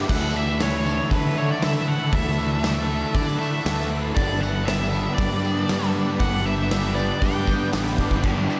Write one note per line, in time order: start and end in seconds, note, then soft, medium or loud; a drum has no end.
0.00 0.10 B3 medium
0.00 0.12 D4 medium
0.00 4.11 E5 medium
0.00 2.08 E6 medium
0.08 0.99 D2 medium
0.08 0.34 D3 medium
0.08 0.35 E3 medium
0.08 0.35 A3 medium
0.08 0.36 D4 loud
0.08 0.35 E4 loud
0.08 4.11 A4 medium
0.08 0.34 A4 medium
0.08 0.36 F#5 medium
0.08 8.19 A5 medium
0.08 kick loud
0.08 open hi-hat medium
0.08 crash medium
0.08 tambourine soft
0.34 0.60 D3 medium
0.34 0.61 E3 medium
0.34 0.61 A3 medium
0.34 0.61 D4 medium
0.34 0.61 E4 medium
0.34 0.61 A4 medium
0.34 0.62 E5 medium
0.34 tambourine medium
0.60 0.85 D3 medium
0.60 0.85 E3 medium
0.60 0.86 A3 medium
0.60 0.87 D4 medium
0.60 1.12 E4 medium
0.60 1.11 A4 medium
0.60 1.14 C#5 medium
0.60 snare loud
0.60 open hi-hat medium
0.60 tambourine medium
0.85 1.10 D3 medium
0.85 1.11 E3 medium
0.85 1.11 A3 medium
0.85 1.12 D4 medium
0.85 tambourine medium
1.11 1.35 D3 medium
1.11 1.56 D3 medium
1.11 1.37 E3 medium
1.11 1.36 A3 medium
1.11 1.38 D4 medium
1.11 1.88 E4 medium
1.11 1.63 E4 medium
1.11 1.63 A4 loud
1.11 1.37 B4 medium
1.11 kick loud
1.11 open hi-hat medium
1.11 tambourine medium
1.36 1.61 D3 medium
1.36 1.62 E3 medium
1.36 1.62 A3 medium
1.36 1.63 D4 loud
1.36 1.50 C#5 medium
1.36 tambourine medium
1.51 1.63 D5 medium
1.62 1.86 D3 loud
1.62 2.07 D3 medium
1.62 1.88 E3 medium
1.62 1.87 A3 medium
1.62 1.89 D4 loud
1.62 2.13 E4 medium
1.62 2.13 A4 medium
1.62 1.89 E5 medium
1.62 snare loud
1.62 open hi-hat medium
1.62 tambourine medium
1.87 2.11 D3 medium
1.87 2.13 E3 medium
1.87 2.12 A3 medium
1.87 2.13 D4 medium
1.87 3.14 E4 medium
1.87 2.14 F#5 medium
1.87 tambourine soft
2.11 3.03 D2 loud
2.11 2.37 D3 medium
2.11 2.38 E3 medium
2.11 2.38 A3 medium
2.11 2.39 D4 medium
2.11 2.39 E4 medium
2.11 2.37 A4 loud
2.11 3.15 E5 medium
2.11 4.14 F#6 medium
2.11 kick loud
2.11 open hi-hat medium
2.11 tambourine soft
2.38 2.62 D3 medium
2.38 2.63 E3 medium
2.38 2.63 A3 medium
2.38 2.64 D4 medium
2.38 2.64 E4 medium
2.38 2.64 A4 medium
2.38 tambourine medium
2.63 2.87 D3 medium
2.63 2.88 E3 medium
2.63 2.88 A3 medium
2.63 2.89 D4 medium
2.63 3.15 E4 medium
2.63 3.15 A4 medium
2.63 snare loud
2.63 open hi-hat medium
2.63 tambourine medium
2.88 3.12 D3 medium
2.88 3.13 E3 medium
2.88 3.13 A3 medium
2.88 3.14 D4 medium
3.13 3.38 D3 medium
3.13 3.60 D3 medium
3.13 3.39 E3 medium
3.13 3.39 A3 medium
3.13 3.40 D4 medium
3.13 3.91 E4 medium
3.13 3.65 E4 medium
3.13 3.65 A4 medium
3.13 3.39 D5 medium
3.13 kick loud
3.13 open hi-hat medium
3.13 tambourine medium
3.39 3.63 D3 medium
3.39 3.64 E3 medium
3.39 3.64 A3 medium
3.39 3.65 D4 medium
3.39 3.87 E5 medium
3.39 tambourine medium
3.64 4.10 D2 medium
3.64 3.89 D3 medium
3.64 3.90 E3 loud
3.64 3.90 A3 medium
3.64 3.91 D4 loud
3.64 4.17 E4 medium
3.64 4.15 A4 medium
3.64 snare loud
3.64 open hi-hat medium
3.64 tambourine medium
3.80 snare soft
3.90 4.14 D3 medium
3.90 4.16 E3 medium
3.90 4.15 A3 medium
3.90 4.17 D4 loud
3.90 5.19 E4 medium
3.90 tambourine soft
4.15 5.07 G1 loud
4.15 4.40 G2 medium
4.15 4.40 D3 loud
4.15 4.42 E3 medium
4.15 4.41 G3 loud
4.15 4.41 B3 loud
4.15 4.42 D4 medium
4.15 4.40 G4 loud
4.15 8.19 B4 medium
4.15 4.42 D5 medium
4.15 8.19 G5 medium
4.15 6.18 E6 medium
4.15 kick loud
4.15 open hi-hat medium
4.15 tambourine soft
4.40 4.66 G2 medium
4.40 4.66 D3 medium
4.40 4.67 E3 medium
4.40 4.67 G3 medium
4.40 4.68 B3 medium
4.40 4.68 D4 medium
4.40 4.68 G4 medium
4.40 4.67 F#5 loud
4.40 tambourine medium
4.66 4.91 G2 medium
4.66 4.91 D3 medium
4.66 5.70 E3 medium
4.66 4.92 G3 medium
4.66 4.93 B3 medium
4.66 4.93 D4 medium
4.66 5.19 G4 medium
4.66 5.14 E5 medium
4.66 snare loud
4.66 open hi-hat soft
4.66 tambourine medium
4.92 5.17 G2 medium
4.92 5.17 D3 medium
4.92 5.19 G3 medium
4.92 5.19 B3 medium
4.92 5.20 D4 medium
4.92 tambourine medium
5.15 5.42 G2 medium
5.15 5.63 G2 medium
5.15 5.42 D3 medium
5.15 5.89 D5 medium
5.15 kick loud
5.15 open hi-hat medium
5.15 tambourine medium
5.19 5.43 G3 medium
5.19 5.44 B3 medium
5.19 5.44 D4 medium
5.19 5.70 G4 loud
5.43 5.68 G2 medium
5.43 5.67 D3 medium
5.43 5.69 G3 medium
5.43 5.69 B3 medium
5.43 5.70 D4 medium
5.43 tambourine medium
5.68 5.94 G2 medium
5.68 6.14 G2 medium
5.68 5.94 D3 medium
5.68 6.20 E3 medium
5.68 5.95 G3 medium
5.68 5.95 B3 medium
5.68 5.96 D4 loud
5.68 6.20 G4 medium
5.68 snare loud
5.68 open hi-hat medium
5.68 tambourine medium
5.83 snare soft
5.94 6.18 G2 medium
5.94 6.19 D3 medium
5.94 6.20 G3 medium
5.94 6.20 B3 medium
5.94 6.21 D4 medium
5.94 tambourine soft
6.19 7.10 G1 loud
6.19 6.44 G2 medium
6.19 6.44 D3 medium
6.19 6.45 E3 medium
6.19 6.44 G3 loud
6.19 6.45 B3 loud
6.19 6.46 D4 medium
6.19 6.44 G4 loud
6.19 6.46 F#5 medium
6.19 8.21 F#6 medium
6.19 kick loud
6.19 open hi-hat medium
6.19 tambourine soft
6.45 6.69 G2 medium
6.45 6.70 D3 medium
6.45 6.71 E3 medium
6.45 6.71 G3 medium
6.45 6.71 B3 medium
6.45 6.71 D4 medium
6.45 6.71 G4 medium
6.45 6.95 E5 medium
6.45 tambourine medium
6.70 6.95 G2 medium
6.70 6.95 D3 medium
6.70 7.72 E3 medium
6.70 6.96 G3 medium
6.70 6.97 B3 medium
6.70 6.97 D4 medium
6.70 7.22 G4 medium
6.70 snare loud
6.70 open hi-hat medium
6.70 tambourine medium
6.95 7.20 G2 medium
6.95 7.21 D3 medium
6.95 7.22 G3 medium
6.95 7.22 B3 medium
6.95 7.23 D4 medium
6.95 7.22 D5 medium
6.95 tambourine medium
7.20 7.46 G2 medium
7.20 7.67 G2 medium
7.20 7.46 D3 medium
7.20 7.46 G3 medium
7.20 7.47 B3 medium
7.20 7.73 G4 medium
7.20 7.68 G5 medium
7.20 kick loud
7.20 open hi-hat medium
7.20 tambourine medium
7.24 7.47 D4 medium
7.47 7.71 G2 medium
7.47 7.72 D3 medium
7.47 7.72 G3 medium
7.47 7.73 B3 medium
7.47 7.74 D4 loud
7.47 kick medium
7.47 tambourine medium
7.72 7.96 A1 medium
7.72 7.97 G2 loud
7.72 7.98 D3 medium
7.72 8.23 E3 medium
7.72 7.98 G3 medium
7.72 7.99 B3 medium
7.72 7.99 D4 loud
7.72 8.23 G4 medium
7.72 snare loud
7.72 open hi-hat medium
7.72 tambourine loud
7.87 snare soft
7.98 8.21 G1 medium
7.98 8.22 G2 medium
7.98 8.23 D3 medium
7.98 8.23 G3 medium
7.98 8.23 B3 medium
7.98 8.23 D4 medium
7.98 kick medium
8.11 kick medium
8.23 8.46 G1 loud
8.23 8.60 G2 medium
8.23 8.60 D3 loud
8.23 8.50 E3 medium
8.23 8.60 G3 medium
8.23 8.60 B3 loud
8.23 8.60 D4 loud
8.23 8.48 G4 medium
8.23 8.60 B4 medium
8.23 8.60 G5 medium
8.23 8.60 D6 medium
8.23 8.60 E6 medium
8.23 kick loud
8.23 tambourine soft
8.23 crash medium
8.48 8.60 E3 medium
8.48 8.60 G3 medium
8.48 8.60 B3 medium
8.48 8.60 D4 medium
8.48 8.60 G4 medium
8.48 tambourine medium